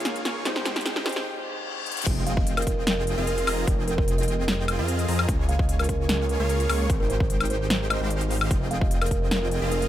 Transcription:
Already playing: C#2 C#3 G#3 A#3 C#4 F4 G#4 C#5 F5, riser
0.00 closed hi-hat
0.05 snare, closed hi-hat
0.16 closed hi-hat
0.25 C#2 A#3 F4 G#4 C#5 C#6, snare, closed hi-hat
0.43 G#1 G#3 C4 D#4 G4 C5 G5, snare, closed hi-hat
0.56 snare
0.65 snare, closed hi-hat
0.76 snare, closed hi-hat
0.81 closed hi-hat
0.86 snare, closed hi-hat
0.96 snare
1.04 G#3 C4 D#4 G4 C5, snare, closed hi-hat
1.09 closed hi-hat
1.12 snare, closed hi-hat
1.26 reverse cymbal
1.86 closed hi-hat
1.92 closed hi-hat
1.97 closed hi-hat
2.02 closed hi-hat
2.06 F1 C4 F4 G#4 D#5 G5, kick, closed hi-hat, crash, impact
2.27 F5, closed hi-hat
2.37 D#5, kick
2.47 closed hi-hat
2.57 A#4, closed hi-hat, high woodblock
2.62 closed hi-hat
2.67 kick, closed hi-hat
2.87 A#4, snare, closed hi-hat
3.07 closed hi-hat
3.18 F1 C4 F4 G#4 D#5 F5
3.27 A#4, closed hi-hat
3.38 A#4, closed hi-hat
3.47 F1 C4 F4 G#4 D#5 A#5, open hi-hat, high woodblock
3.67 F1 C4 F4 G#4 D#5 G5, kick, closed hi-hat
3.88 A#4, closed hi-hat
3.98 A#4, kick
4.08 closed hi-hat
4.18 D#5, closed hi-hat
4.23 closed hi-hat
4.28 D#5, closed hi-hat
4.48 snare, closed hi-hat
4.68 closed hi-hat, high woodblock
4.79 F2 C4 F4 G#4 D#5 F5
4.88 closed hi-hat
4.99 closed hi-hat
5.08 F2 C4 F4 G#4 D#5 A#5, open hi-hat
5.19 high woodblock
5.29 C#2 A#3 F4 G#4 C#5 G#5, kick, closed hi-hat
5.49 F5, closed hi-hat
5.59 D#5, kick
5.69 closed hi-hat
5.79 A#4, closed hi-hat, high woodblock
5.84 closed hi-hat
5.89 kick, closed hi-hat
6.09 A#4, snare, closed hi-hat
6.29 closed hi-hat
6.40 C#2 A#3 F4 G#4 A#4 C#5 F5
6.49 closed hi-hat
6.60 closed hi-hat
6.70 C#2 A#3 F4 G#4 C#5 C#6, open hi-hat, high woodblock
6.90 G#1 G#3 D#4 G4 C5 G5, kick, closed hi-hat
7.00 A#4
7.10 C5, closed hi-hat
7.20 kick
7.30 closed hi-hat
7.40 closed hi-hat, high woodblock
7.45 closed hi-hat
7.50 C5, closed hi-hat
7.70 snare, closed hi-hat
7.90 D#5, closed hi-hat, high woodblock
8.01 G#1 G#3 D#4 G4 C5 F5
8.10 closed hi-hat
8.21 closed hi-hat
8.31 open hi-hat
8.41 high woodblock
8.51 F1 C4 F4 G#4 D#5 G5, kick, closed hi-hat
8.71 F5, closed hi-hat
8.81 D#5, kick
8.91 closed hi-hat
9.01 A#4, closed hi-hat, high woodblock
9.06 closed hi-hat
9.11 A#4, kick, closed hi-hat
9.31 A#4, snare, closed hi-hat
9.51 closed hi-hat
9.62 F1 C4 F4 G#4 D#5 F5
9.72 A#4, closed hi-hat
9.82 A#4, closed hi-hat

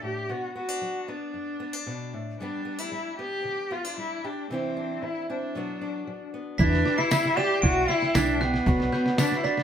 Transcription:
Already playing: B3 D4 E4
0.02 A2 G4
0.29 B2 B3 F#4
0.55 B3 F#4
0.69 D4
0.81 F#3
1.08 B3 D4
1.34 F#2
1.60 B3
1.73 D4
1.86 B2
2.13 A2
2.40 G2 G3 B3 D4 G4
2.65 B3
2.79 D4 E4
2.92 G3
3.19 B3 G4
3.45 D3
3.71 B3 F4
3.85 D4
3.98 G3 E4
4.24 D4 G4
4.50 C3 E3 C4 D4 E4
4.77 D4
5.02 E3 E4
5.30 C4 D4
5.55 B2 F#3 B3 D4 F#4
5.81 D4
6.07 F#3
6.34 B3
6.58 E2 B2 E3 G3 D4 E4 B4 D5 G5 B6, kick, snare
6.73 snare
6.85 G4, snare
6.98 E4 C7, snare
7.10 E3 G3 D4 E4, snare, tambourine
7.25 snare
7.37 E3 G3 D4 E4 G4 D5 E7, snare
7.62 B1 E4 F#4 D7, kick, snare
7.88 E3 G3 D4 E4 E5 C7, snare
8.02 snare
8.14 B1 E3 G3 D4 E4 B6, snare, tambourine
8.41 B3 G4 F#6, snare
8.54 snare
8.66 B1 B2 F#3 B3 D4 F#4 B5, kick, snare
8.80 snare
8.92 B3 B4 G6, snare
9.06 snare
9.18 F#3 B3 D4 F#4 B6, snare, tambourine
9.32 snare
9.37 E4 C7
9.44 B3 D4 F#4 D5 B6, snare
9.57 snare

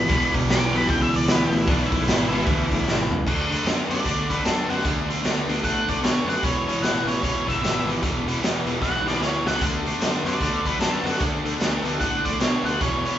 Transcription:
Already playing: E3 B5
0.08 E1 E2 B2 E3, kick, open hi-hat
0.34 E1, kick, open hi-hat
0.48 B1 D6, snare, open hi-hat
0.72 B1 E2 B2 E3, open hi-hat
0.78 B5
0.88 C#2 G5, kick, open hi-hat
1.02 E5
1.11 C#2, open hi-hat
1.16 D5
1.27 D2, snare, open hi-hat
1.31 B4
1.45 G4
1.51 D2, open hi-hat
1.56 E4
1.67 B1 E2 B2 E3 D4, kick, open hi-hat
1.83 E4
1.91 B1, kick, open hi-hat
2.06 G#1, snare, open hi-hat
2.31 G#1 B2 E3, open hi-hat
2.35 E2
2.46 D2, kick, open hi-hat
2.71 D2, kick, open hi-hat
2.84 G#1, snare
3.10 C#2, floor tom
3.25 D2 D3 A3 D4, kick, crash
3.50 D3 A3 D4, closed hi-hat
3.65 F#2 D3 A3 D4, snare, closed hi-hat
3.89 F#2 D3 A3 D4 D5, closed hi-hat
4.05 D2 D3 A3 D4, kick, closed hi-hat
4.29 D2 D3 A3 D4 B4, kick, closed hi-hat
4.44 F#2 D3 A3 D4 A4, snare, closed hi-hat
4.68 F#2 D3 A3 D4 F#4, closed hi-hat
4.79 snare
4.84 D2 D3 A3 D4, kick, closed hi-hat
5.06 D2 D3 A3 D4, closed hi-hat
5.22 D2 D3 A3, snare, closed hi-hat
5.26 D4
5.46 D2 D3 A3 D4, closed hi-hat
5.63 A2 D3 A3 D4 F#5, kick, closed hi-hat
5.88 A2 D3 A3 D4 D5, kick, closed hi-hat
6.01 B2 D3 A3 C#5, snare, closed hi-hat
6.05 D4
6.25 F#2 D3 A3 F#5
6.29 D4, closed hi-hat
6.42 E1 E2 B2 E3 C#5, kick, closed hi-hat
6.68 E2 B2 E3 C#5, closed hi-hat
6.81 A1 E2 B2 F#5, snare, closed hi-hat
6.85 E3
7.05 A1 E2 B2 E3 C#5, closed hi-hat
7.22 E1 E2 B2 E3 C#5, kick, closed hi-hat
7.46 E1 E2 B2 E3 E5, kick, closed hi-hat
7.60 G#1 E2 B2 E3, closed hi-hat
7.65 snare
7.84 G#1 E2 B2 E3
7.89 closed hi-hat
8.02 E1 E2 B2 E3, kick, closed hi-hat
8.24 E1 E2 B2 E3, closed hi-hat
8.40 E1 E2 B2 E3, closed hi-hat
8.44 snare
8.65 E1 E2 B2 E3, closed hi-hat
8.81 B1 E2 B2 E3 F#5, kick, snare
9.03 B1 E2 B2 E3, snare
9.08 D5
9.18 D2 E2, snare
9.22 B2 E3 C#5
9.44 C#2 E2 B2 E3 F#5, snare
9.61 D2 D3 A3 D4, kick, closed hi-hat
9.86 D3 A3 D4, closed hi-hat
9.99 F#2 D3 A3, snare, closed hi-hat
10.03 D4
10.24 F#2 D3 A3 D4 D5, closed hi-hat
10.40 D2 D3 A3 D4, kick, closed hi-hat
10.65 D2 D3 A3 D4 B4, kick, closed hi-hat
10.79 F#2 D3 A3 D4 A4, snare, closed hi-hat
11.04 F#2 D3 A3 D4 F#4, closed hi-hat
11.14 snare
11.19 D2 D3 A3 D4, kick, closed hi-hat
11.45 D2 D3 A3 D4, closed hi-hat
11.60 D2 D3 A3 D4, snare, closed hi-hat
11.84 D2 D3 A3 D4, closed hi-hat
12.00 A2 D3 A3 D4 F#5, kick, closed hi-hat
12.25 A2 D3 A3 D4 D5, kick, closed hi-hat
12.40 B2 D3 A3 D4 C#5, snare, closed hi-hat
12.64 D2 D3 A3 D4 F#5, closed hi-hat
12.80 E1 E2 B2 E3 C#5, kick, closed hi-hat
13.05 E2 B2 E3 C#5, closed hi-hat

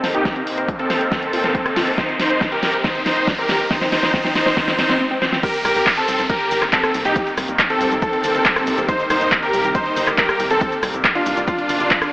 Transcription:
Already playing: C3 A#3 C4 D#4, riser
0.04 C5, snare, open hi-hat
0.14 D#4 G4, closed hi-hat
0.25 C4, kick, snare, closed hi-hat
0.36 C4, closed hi-hat
0.47 open hi-hat
0.58 C5, closed hi-hat
0.68 D4, kick, closed hi-hat
0.79 A#3 C4 A4, closed hi-hat
0.90 C5, snare, open hi-hat
1.01 closed hi-hat
1.12 C4 A4, kick, snare, closed hi-hat
1.22 closed hi-hat
1.33 F4, open hi-hat
1.44 C5, snare, closed hi-hat
1.55 C5, kick, closed hi-hat
1.66 cross-stick, closed hi-hat
1.76 F4, snare, open hi-hat
1.87 open hi-hat
1.98 C4 D#4 C5, kick, snare, closed hi-hat
2.09 C4, closed hi-hat
2.20 D#4 C5, snare, open hi-hat
2.30 C5, closed hi-hat
2.41 D4, kick, snare, closed hi-hat
2.52 C4 G4 A#4, closed hi-hat
2.63 snare, open hi-hat
2.74 closed hi-hat
2.84 C4 D#4 C5, kick, snare, closed hi-hat
2.95 C4, closed hi-hat
3.06 D#4 C5, snare, open hi-hat
3.17 C5, closed hi-hat
3.27 D4, kick, snare, closed hi-hat
3.38 C4 G4 A#4, closed hi-hat
3.49 snare, open hi-hat
3.60 closed hi-hat
3.71 C4 D#4 C5, kick, snare, closed hi-hat
3.81 C4, snare, closed hi-hat
3.92 D#4 C5, snare, open hi-hat
4.03 C5, snare, closed hi-hat
4.14 C4 D#4 C5, kick, snare, closed hi-hat
4.25 C4, snare, closed hi-hat
4.35 D#4 C5, snare, open hi-hat
4.46 C5, snare
4.57 C4 D#4 C5, kick, snare, closed hi-hat
4.68 C4, snare, closed hi-hat
4.79 C4 D#4 C5, snare, open hi-hat
4.89 C4, snare, closed hi-hat
5.00 C4
5.11 C4
5.22 C4, snare
5.32 C4, snare
5.43 C3 D#3 G3 A#3 G4 A#4, kick, closed hi-hat, crash, downlifter, shaker
5.54 closed hi-hat, shaker
5.65 C2 G4 A#4, cross-stick, open hi-hat, shaker
5.76 C2, closed hi-hat, shaker
5.86 kick, clap, closed hi-hat, shaker
5.97 C4 A4, closed hi-hat
6.08 C2, open hi-hat, shaker
6.19 C2, closed hi-hat, shaker
6.30 G4 A#4, kick, closed hi-hat, shaker
6.40 closed hi-hat
6.51 G1, open hi-hat, shaker
6.62 G1, cross-stick, clap, shaker
6.73 C4 A4, kick, clap, closed hi-hat, shaker
6.84 cross-stick, closed hi-hat, shaker
6.94 C2, open hi-hat, shaker
7.05 C2 D#4 G4, closed hi-hat, shaker
7.16 kick, closed hi-hat, shaker
7.27 closed hi-hat, shaker
7.38 C2, cross-stick, open hi-hat, shaker
7.48 C2, closed hi-hat, shaker
7.59 kick, clap, closed hi-hat, shaker
7.70 C4 A4, closed hi-hat
7.81 C2, open hi-hat, shaker
7.91 C2, closed hi-hat, shaker
8.02 C4 A4, kick, closed hi-hat, shaker
8.13 closed hi-hat
8.24 G1, open hi-hat, shaker
8.35 G1, closed hi-hat, shaker
8.45 kick, clap, closed hi-hat, shaker
8.56 cross-stick, closed hi-hat, shaker
8.67 C2, open hi-hat, shaker
8.78 C2, closed hi-hat, shaker
8.89 D#4 C5, kick, closed hi-hat, shaker
8.99 closed hi-hat, shaker
9.10 C2 D#4 C5, cross-stick, open hi-hat, shaker
9.21 C2, closed hi-hat, shaker
9.32 kick, clap, closed hi-hat, shaker
9.43 G4 A#4, closed hi-hat
9.53 C2, open hi-hat, shaker
9.64 C2, closed hi-hat, shaker
9.75 D#4 C5, kick, closed hi-hat, shaker
9.86 closed hi-hat
9.97 G1, open hi-hat, shaker
10.07 G1, cross-stick, clap, closed hi-hat, shaker
10.18 G4 A#4, kick, clap, closed hi-hat, shaker
10.29 cross-stick, closed hi-hat, shaker
10.40 C2, open hi-hat, shaker
10.50 C2 C4 A4, closed hi-hat, shaker
10.61 kick, closed hi-hat, shaker
10.72 closed hi-hat, shaker
10.83 C2, cross-stick, open hi-hat, shaker
10.94 C2, closed hi-hat, shaker
11.04 kick, clap, closed hi-hat, shaker
11.15 D4 F4, closed hi-hat
11.26 C2, open hi-hat, shaker
11.37 C2, closed hi-hat, shaker
11.48 D4 F4, kick, closed hi-hat, shaker
11.58 closed hi-hat
11.69 G1, open hi-hat, shaker
11.80 G1, closed hi-hat, shaker
11.91 kick, clap, closed hi-hat, shaker
12.02 cross-stick, closed hi-hat, shaker

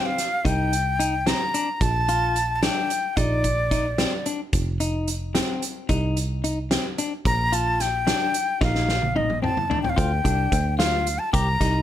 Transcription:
Already playing: C4
0.06 F5
0.18 snare, closed hi-hat
0.45 C2 D#4 G5, kick, closed hi-hat
0.73 closed hi-hat
0.99 D#4, closed hi-hat
1.26 C4 A#5, snare, closed hi-hat
1.54 D4, closed hi-hat
1.81 A#1 A5, kick, closed hi-hat
2.08 F4, closed hi-hat
2.36 closed hi-hat
2.56 A5
2.63 D4 G5, snare, closed hi-hat
2.90 closed hi-hat
3.17 A#1 D#4 D5, kick, closed hi-hat
3.44 kick, closed hi-hat
3.71 D#4, kick, snare, closed hi-hat
3.98 C4, snare, closed hi-hat
4.26 D4, closed hi-hat
4.53 F1, kick, closed hi-hat
4.80 D#4, closed hi-hat
5.08 closed hi-hat
5.35 C4, snare, closed hi-hat
5.62 closed hi-hat
5.89 C2 D#4, kick, closed hi-hat
6.17 closed hi-hat
6.44 D#4, closed hi-hat
6.71 C4, snare, closed hi-hat
6.98 D4, closed hi-hat
7.25 A#1 A#5, kick, closed hi-hat
7.52 F4 A5, closed hi-hat
7.80 G5, snare, closed hi-hat
8.07 D4, snare, closed hi-hat
8.34 closed hi-hat
8.61 A#1 D#4 F5, kick, snare
8.75 snare
8.89 snare
9.02 high tom
9.16 D#4 D#5, mid tom
9.30 mid tom
9.42 C4 A5, mid tom
9.57 mid tom
9.70 D4, floor tom
9.83 G5, floor tom
9.89 F5
9.96 D2 F4 G5, kick, closed hi-hat
10.24 C2 D4, kick, closed hi-hat
10.52 D2, kick, closed hi-hat
10.78 F4 F5, snare, closed hi-hat
11.07 closed hi-hat
11.19 A5
11.33 C2 G4 A#5, kick, closed hi-hat
11.60 C2 D#4, kick, snare, closed hi-hat

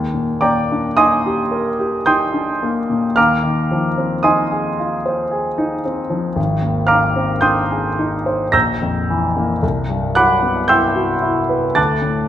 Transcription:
Already playing: D#2
0.14 A#2
0.41 A#3 D5 G5 A#5 D6
0.72 D4
0.97 D#4 D#5 G#5 C6 D#6
1.26 G4
1.51 A#4
1.79 G4
2.06 D#4 G5 C6 D#6 G6
2.33 D4
2.63 A#3
2.89 A#2
3.16 D#2 F5 A#5 D6 F6
3.43 D#3
3.71 F3
3.98 C4
4.23 D#4 D#5 G#5 C6 D#6
4.51 G#4
4.79 F4
5.06 C5
5.31 G#4
5.58 D#4
5.85 C4
6.10 F3
6.36 G#1
6.61 D#2
6.87 D#3 F5 A#5 D6 F6
7.16 C4
7.41 D4 G5 C6 D#6 G6
7.71 G#4
7.99 D#4
8.26 C5
8.52 A#1 A#5 E6 G6 A#6
8.82 F2
9.10 E3
9.36 A#3
9.63 C2
9.89 G2
10.15 F#3 F#5 B5 D6 F#6
10.43 B3
10.68 E4 G5 C6 E6 G6
10.95 F#4
11.22 E4
11.49 B4
11.75 D2 A5 D6 F#6 A6
12.02 A2

